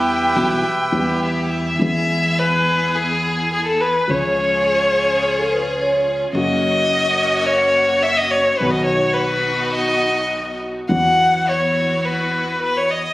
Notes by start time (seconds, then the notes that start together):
Already playing: E2 E3 G3 B3 E4 G4 B4 E5 G5
0.36 B1 B2 E3 G3 B3 E4 G4
0.92 E2 E3 G3 B3 E4 G4
0.96 G4
1.23 E5
1.80 E2 E3 G#3 B3 E4 G#4 E5
2.39 B4
2.95 G#4
3.53 G#4
3.66 A4
3.81 B4
4.08 C#2 C#3 F3 G#3 C#4 F4 G#4 C#5
4.12 G#4
4.66 G#4
5.23 G#4
5.37 A4
5.52 B4
5.81 C#5
6.33 F#1 F#2 C#3 F#3 A#3 C#4 F#4 D#5
6.37 F#4
7.46 C#5
8.03 E5
8.17 D#5
8.31 C#5
8.58 B1 D#3 F#3 B3 D#4 F#4 B4
8.62 B2 B3 F#4
8.70 D#5
8.85 C#5
9.14 B4
9.73 D#5
10.89 E2 E3 F#3 B3 E4 F#4 F#5
10.93 F#4
11.49 C#5
12.05 B4
12.63 B4
12.77 C#5
12.91 D#5